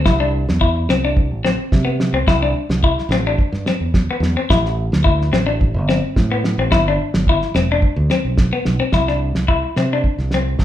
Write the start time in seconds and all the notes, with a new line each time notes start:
0.05 C2 E4, kick, snare
0.20 D4
0.48 E2, snare
0.61 E4, kick
0.89 C2 C4, snare
1.05 D4
1.17 kick
1.31 A1
1.45 C4, snare
1.72 C3, kick, snare
1.85 B3
2.00 snare
2.13 C2 C4
2.27 C2 E4, kick, snare
2.43 D4
2.69 C2, snare
2.83 E4, kick
2.99 snare
3.09 A1 C4, snare
3.27 D4
3.38 kick
3.52 G2, snare
3.66 C4, snare
3.80 E2
3.94 kick, snare
4.11 B3
4.20 E2, snare
4.37 C4
4.50 A1 E4, kick, snare
4.66 snare
4.92 D2, snare
5.04 E4, kick
5.22 snare
5.32 A1 C4, snare
5.47 D4
5.61 kick
5.74 G1
5.89 C4, snare
6.16 A2, kick, snare
6.32 B3
6.44 snare
6.58 A1 C4
6.71 G1 E4, kick, snare
6.88 D4
7.14 G1, snare
7.27 E4, kick
7.42 snare
7.54 E1 C4, snare
7.72 D4
7.82 kick
7.96 D2
8.10 C4, snare
8.25 B1
8.37 kick, snare
8.53 B3
8.65 B1, snare
8.80 C4
8.92 C2 E4, kick, snare
9.08 D4, snare
9.35 C2, snare
9.48 E4, kick
9.76 C3 C4, snare
9.93 D4
10.04 kick
10.18 C2, snare
10.31 C4, snare
10.59 A1, kick, snare